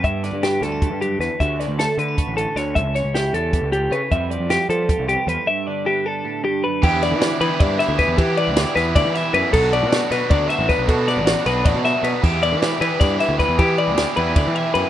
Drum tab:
CC |-------|-------|-------|-------|
RD |-------|-------|-------|-------|
HH |xxxxxxx|xxxxxxx|xxxxxxx|xxxxxxx|
SD |-ooo--o|-oo---o|-oo----|--o----|
BD |o---o--|o---o--|o---o--|o---o--|

CC |-------|x------|-------|x------|
RD |-------|-xxxxxx|xxxxxxx|-xxxxxx|
HH |-------|-------|-------|-------|
SD |-------|-oo--oo|--oo-o-|--oo-oo|
BD |-------|o---o-o|o---o--|o---o-o|

CC |-------|x------|-------|
RD |xxxxxxx|-xxxxxx|xxxxxxx|
HH |-------|-------|-------|
SD |-ooo-o-|--o-ooo|--o----|
BD |o---o--|o---o-o|o---o--|